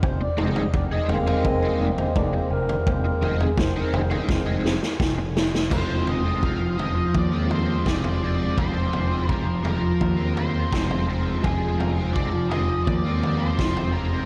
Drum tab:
CC |----------------|----------------|x---------------|----------------|
SD |----------------|----o---o-ooo-oo|------------o---|------------o---|
T2 |--o---------o---|----------------|----------------|----------------|
FT |o--o--ooo--o---o|o-oo--oo--------|o-o---o-o-o--o--|o-o---o-o-o--o--|
BD |o---o---o---o---|o---o---o---o---|o---o---o---o---|o---o---o---o---|

CC |----------------|
SD |------------o---|
T2 |----------------|
FT |o-o---o-o-o--o--|
BD |o---o---o---o---|